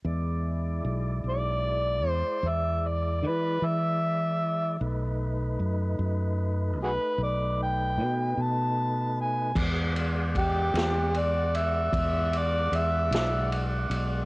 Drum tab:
CC |------------|------------|x-----------|
RD |------------|------------|-xxxxxxxxxxx|
SD |------------|------------|---o-----o--|
BD |------------|------------|o-o---o-----|